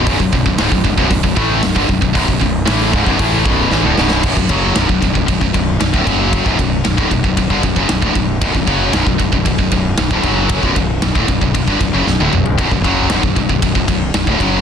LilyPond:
<<
  \new Staff \with { instrumentName = "Distorted electric guitar" } { \clef bass \time 4/4 \key b \minor \tempo 4 = 115 <b,, fis,>16 <b,, fis,>16 <b,, fis,>16 <b,, fis,>16 <cis, gis,>16 <b,, fis,>16 <b,, fis,>16 <b,, fis,>16 <b,, fis,>16 <b,, fis,>16 <a, e a>8 <b,, fis,>16 <g, d>16 <b,, fis,>16 <b,, fis,>16 | <b,, fis,>16 <b,, fis,>16 <b,, fis,>8 <a, e a>8 <cis, gis,>16 <b,, fis,>16 <a, e a>8 <b,, fis, b,>8 <a, e>16 <d, a,>16 <b,, fis, b,>8 | <b,, fis,>16 <b,, fis,>16 <fis, cis fis>8 <b,, fis,>16 <b,, fis,>16 <b,, fis,>16 <b,, fis,>16 <b,, fis,>16 <b,, fis,>16 <b,, fis,>8 <b,, fis,>16 <d, a,>16 <fis, cis fis>8~ | <fis, cis fis>16 <b,, fis,>16 <b,, fis,>8 <b,, fis,>16 <d, a,>16 <b,, fis,>16 <b,, fis,>16 <b,, fis,>16 <g, d>16 <b,, fis,>16 <fis, cis>16 <b,, fis,>16 <d, a,>16 <b,, fis,>8 |
<b,, fis,>16 <b,, fis,>16 <fis, cis fis>8 <b,, fis,>16 <b,, fis,>16 <b,, fis,>16 <b,, fis,>16 <b,, fis,>16 <b,, fis,>16 <b,, fis,>8 <b,, fis,>16 <d, a,>16 <fis, cis fis>8~ | <fis, cis fis>16 <b,, fis,>16 <b,, fis,>8 <b,, fis,>16 <d, a,>16 <b,, fis,>16 <b,, fis,>16 <b,, fis,>16 <g, d>16 <b,, fis,>16 <fis, cis>16 <b,, fis,>16 <d, a,>16 <b,, fis,>8 | <b,, fis,>16 <b,, fis,>16 <fis, cis fis>8 <b,, fis,>16 <b,, fis,>16 <b,, fis,>16 <b,, fis,>16 <b,, fis,>16 <b,, fis,>16 <b,, fis,>8 <b,, fis,>16 <d, a,>16 <fis, cis fis>8 | }
  \new Staff \with { instrumentName = "Distorted electric guitar" } { \clef bass \time 4/4 \key b \minor <b,, fis,>16 <b,, fis,>16 <b,, fis,>16 <b,, fis,>16 <cis, gis,>16 <b,, fis,>16 <b,, fis,>16 <b,, fis,>16 <b,, fis,>16 <b,, fis,>16 <a, e a>8 <b,, fis,>16 <g, d>16 <b,, fis,>16 <b,, fis,>16 | <b,, fis,>16 <b,, fis,>16 <b,, fis,>8 <a, e a>8 <cis, gis,>16 <b,, fis,>16 <a, e a>8 <b,, fis, b,>8 <a, e>16 <d, a,>16 <b,, fis, b,>8 | <b,, fis,>16 <b,, fis,>16 <fis, cis fis>8 <b,, fis,>16 <b,, fis,>16 <b,, fis,>16 <b,, fis,>16 <b,, fis,>16 <b,, fis,>16 <b,, fis,>8 <b,, fis,>16 <d, a,>16 <fis, cis fis>8~ | <fis, cis fis>16 <b,, fis,>16 <b,, fis,>8 <b,, fis,>16 <d, a,>16 <b,, fis,>16 <b,, fis,>16 <b,, fis,>16 <g, d>16 <b,, fis,>16 <fis, cis>16 <b,, fis,>16 <d, a,>16 <b,, fis,>8 |
<b,, fis,>16 <b,, fis,>16 <fis, cis fis>8 <b,, fis,>16 <b,, fis,>16 <b,, fis,>16 <b,, fis,>16 <b,, fis,>16 <b,, fis,>16 <b,, fis,>8 <b,, fis,>16 <d, a,>16 <fis, cis fis>8~ | <fis, cis fis>16 <b,, fis,>16 <b,, fis,>8 <b,, fis,>16 <d, a,>16 <b,, fis,>16 <b,, fis,>16 <b,, fis,>16 <g, d>16 <b,, fis,>16 <fis, cis>16 <b,, fis,>16 <d, a,>16 <b,, fis,>8 | <b,, fis,>16 <b,, fis,>16 <fis, cis fis>8 <b,, fis,>16 <b,, fis,>16 <b,, fis,>16 <b,, fis,>16 <b,, fis,>16 <b,, fis,>16 <b,, fis,>8 <b,, fis,>16 <d, a,>16 <fis, cis fis>8 | }
  \new Staff \with { instrumentName = "Distorted electric guitar" } { \clef bass \time 4/4 \key b \minor <b,, fis,>16 <b,, fis,>16 <b,, fis,>16 <b,, fis,>16 <cis, gis,>16 <b,, fis,>16 <b,, fis,>16 <b,, fis,>16 <b,, fis,>16 <b,, fis,>16 <a, e a>8 <b,, fis,>16 <g, d>16 <b,, fis,>16 <b,, fis,>16 | <b,, fis,>16 <b,, fis,>16 <b,, fis,>8 <a, e a>8 <cis, gis,>16 <b,, fis,>16 <a, e a>8 <b,, fis, b,>8 <a, e>16 <d, a,>16 <b,, fis, b,>8 | r1 | r1 |
r1 | r1 | r1 | }
  \new Staff \with { instrumentName = "Fingered electric bass" } { \clef bass \time 4/4 \key b \minor b,,,16 b,,,16 b,,,16 b,,,16 cis,,16 b,,,16 b,,,16 b,,,16 b,,,16 b,,,16 a,,8 b,,,16 g,,16 b,,,16 b,,,16 | b,,,16 b,,,16 b,,,8 a,,8 cis,,16 b,,,16 a,,8 b,,,8 a,,16 d,,16 b,,,8 | b,,,16 b,,,16 fis,,8 b,,,16 b,,,16 b,,,16 b,,,16 b,,,16 b,,,16 b,,,8 b,,,16 d,,16 fis,,8~ | fis,,16 b,,,16 b,,,8 b,,,16 d,,16 b,,,16 b,,,16 b,,,16 g,,16 b,,,16 fis,,16 b,,,16 d,,16 b,,,8 |
b,,,16 b,,,16 fis,,8 b,,,16 b,,,16 b,,,16 b,,,16 b,,,16 b,,,16 b,,,8 b,,,16 d,,16 fis,,8~ | fis,,16 b,,,16 b,,,8 b,,,16 d,,16 b,,,16 b,,,16 b,,,16 g,,16 b,,,16 fis,,16 b,,,16 d,,16 b,,,8 | b,,,16 b,,,16 fis,,8 b,,,16 b,,,16 b,,,16 b,,,16 b,,,16 b,,,16 b,,,8 b,,,16 d,,16 fis,,8 | }
  \new DrumStaff \with { instrumentName = "Drums" } \drummode { \time 4/4 <hho bd>16 bd16 bd16 bd16 <hho sn>16 bd16 bd16 bd16 <hho bd>16 bd16 bd8 <hho sn>16 bd16 bd16 bd16 | <hho bd>16 bd16 bd8 <hho sn>8 bd16 bd16 <hho bd>8 bd8 sn8 sn16 sn16 | <cymc bd>16 bd16 <bd cymr>8 <cymr sn>16 bd16 <bd cymr>16 bd16 <bd cymr>16 bd16 <bd cymr>8 <cymr sn>16 bd16 <bd cymr>8 | <bd cymr>16 bd16 <bd cymr>8 <cymr sn>16 bd16 <bd cymr>16 bd16 <bd cymr>16 bd16 <bd cymr>16 bd16 <cymr sn>16 bd16 <bd cymr>8 |
<bd cymr>16 bd16 <bd cymr>8 <cymr sn>16 bd16 <bd cymr>16 bd16 <bd cymr>16 bd16 <bd cymr>8 <cymr sn>16 bd16 <bd cymr>8 | <bd cymr>16 bd16 <bd cymr>8 <cymr sn>16 bd16 <bd cymr>16 bd16 <bd cymr>16 bd16 <bd cymr>8 sn16 tommh16 toml16 tomfh16 | <bd cymr>16 bd16 <bd cymr>8 <cymr sn>16 bd16 <bd cymr>16 bd16 <bd cymr>16 bd16 <bd cymr>8 <cymr sn>16 bd16 <bd cymr>8 | }
>>